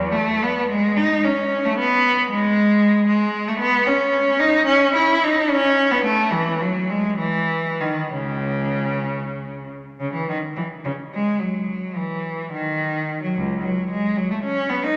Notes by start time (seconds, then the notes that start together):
Already playing: E2
0.12 A3
0.43 B3
0.70 G#3
0.97 D#4
1.24 C#4
1.65 A3
1.78 B3
2.30 G#3
3.07 G#3
3.48 A3
3.60 B3
3.86 C#4
4.39 D#4
4.66 C#4
4.94 E4
5.24 D#4
5.50 C#4
5.91 B3
6.05 A3
6.31 E3
6.62 F#3
6.90 G#3
7.17 E3
7.80 D#3
8.12 C#2 C#3
10.00 C#3
10.13 E3
10.29 D#3
10.57 E3
10.85 C#3
11.14 G#3
11.39 F#3
11.96 E3
12.53 D#3
13.22 F#3
13.36 C#2
13.62 F#3
13.90 G#3
14.17 F#3
14.31 A3
14.44 C#4
14.69 B3
14.83 D#4